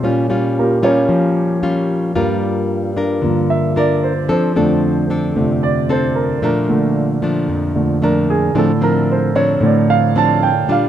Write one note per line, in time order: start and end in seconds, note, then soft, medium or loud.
0.02 2.12 A#2 soft
0.02 1.07 A#2 medium
0.02 2.12 G3 soft
0.02 0.26 G3 medium
0.02 0.83 C#4 soft
0.02 0.26 C#4 medium
0.02 0.26 F4 medium
0.30 0.79 G3 medium
0.30 0.79 C#4 medium
0.30 0.79 F4 medium
0.59 0.84 A#3 soft
0.59 0.84 F4 soft
0.59 0.83 G4 soft
0.59 0.83 A#4 medium
0.83 1.59 G3 medium
0.83 1.59 C#4 medium
0.83 1.33 C#4 medium
0.83 1.59 F4 medium
0.83 1.34 G4 soft
0.83 1.34 A#4 medium
0.83 1.33 C#5 medium
1.09 2.13 F3 medium
1.63 2.12 G3 medium
1.63 2.12 C#4 medium
1.63 2.12 F4 medium
2.15 3.21 G2 soft
2.15 3.21 F3 soft
2.15 3.20 G3 medium
2.15 3.22 A#3 soft
2.15 2.92 D4 medium
2.15 2.92 F4 medium
2.15 2.92 A#4 medium
2.97 3.72 D4 medium
2.97 3.73 F4 medium
2.97 3.73 A#4 medium
3.22 3.47 G2 soft
3.22 4.26 D3 medium
3.22 3.47 F3 soft
3.22 3.47 A#3 soft
3.50 3.76 E5 medium
3.76 4.12 D4 medium
3.76 4.12 F4 medium
3.76 4.13 A#4 medium
3.76 4.03 D5 medium
4.03 4.29 C5 medium
4.29 5.33 F3 medium
4.29 4.52 C4 medium
4.29 4.52 D4 medium
4.29 4.52 A4 medium
4.29 4.80 C5 medium
4.56 4.92 F2 soft
4.56 4.92 D3 soft
4.56 4.92 A3 soft
4.56 5.05 C4 medium
4.56 5.05 D4 medium
4.56 5.06 A4 medium
5.10 5.85 C4 medium
5.10 5.86 D4 medium
5.10 5.86 A4 medium
5.36 5.60 F2 soft
5.36 6.40 C3 medium
5.36 5.60 D3 soft
5.36 5.60 A3 soft
5.63 5.89 D5 medium
5.89 6.38 C4 medium
5.89 6.39 D4 medium
5.89 6.39 A4 medium
5.89 6.16 C5 medium
6.15 6.42 A#4 medium
6.42 7.46 A#2 medium
6.42 7.18 F3 medium
6.42 7.19 A3 medium
6.42 7.19 D4 medium
6.42 6.93 A#4 medium
6.69 7.74 A#2 soft
6.69 7.74 D3 soft
6.69 7.74 A3 soft
7.22 7.98 F3 medium
7.22 7.98 A3 medium
7.22 7.99 D4 medium
7.48 8.53 F2 medium
7.75 7.99 A#2 soft
7.75 8.00 D3 soft
7.75 8.00 A3 soft
8.02 8.53 F3 medium
8.02 8.53 A3 medium
8.02 8.54 D4 medium
8.02 8.29 A#4 medium
8.30 8.55 G#4 medium
8.55 9.59 A2 medium
8.55 8.91 A2 soft
8.55 8.91 D3 soft
8.55 8.71 F3 medium
8.55 8.92 A3 soft
8.55 8.71 C4 medium
8.55 8.71 D4 medium
8.55 8.83 A4 medium
8.81 9.31 F3 medium
8.81 9.31 C4 medium
8.81 9.31 D4 medium
8.81 9.09 A#4 medium
9.11 9.36 C5 medium
9.35 10.11 F3 medium
9.35 10.11 C4 medium
9.35 10.11 D4 medium
9.35 9.62 C#5 medium
9.61 10.65 A2 medium
9.61 9.86 A2 soft
9.61 9.87 D3 soft
9.61 9.87 A3 soft
9.65 9.90 D5 medium
9.90 10.15 F5 medium
10.16 10.50 F3 medium
10.16 10.50 C4 medium
10.16 10.50 D4 medium
10.16 10.42 A5 medium
10.43 10.68 G5 medium
10.68 10.89 A#2 medium
10.68 10.89 G3 medium
10.68 10.89 D4 medium
10.68 10.89 F4 medium
10.68 10.89 F5 medium